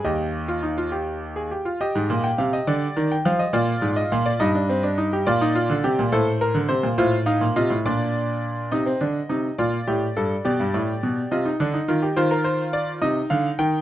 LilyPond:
<<
  \new Staff \with { instrumentName = "Grand piano" } { \time 6/8 \key ees \major \tempo 4. = 70 << { ees''2~ ees''8 r8 | ees''8. g''16 f''16 ees''16 d''8. g''16 f''16 ees''16 | d''8. ees''16 f''16 d''16 ees''4. | d''4. c''4. |
c''8 f''8 ees''8 d''4. | ees''4. d''4. | d''4. ees''4. | c''16 bes'16 c''8 d''8 ees''8 f''8 g''8 | } \\ { g'8. f'16 ees'16 f'16 g'8. aes'16 g'16 f'16 | g'2. | f'4. ees'16 d'16 c'16 d'16 ees'16 g'16 | f'16 ees'16 f'8 g'8 a'8 bes'8 c''8 |
f'8 ees'8 f'8 d'4. | ees'16 c'16 d'8 ees'8 f'8 g'8 a'8 | g'4. f'16 ees'16 d'16 ees'16 f'16 g'16 | f'4. ees'4. | } >> }
  \new Staff \with { instrumentName = "Grand piano" } { \clef bass \time 6/8 \key ees \major ees,2~ ees,8 r8 | r16 aes,16 bes,8 c8 d8 ees8 f8 | bes,8 aes,8 bes,8 g,4. | bes,8. d16 c16 bes,16 a,8. d16 c16 bes,16 |
a,8. bes,16 c16 a,16 bes,4. | c8 d8 c8 bes,8 a,8 g,8 | b,16 g,16 a,8 b,8 c8 d8 ees8 | ees4. c8 d8 ees8 | }
>>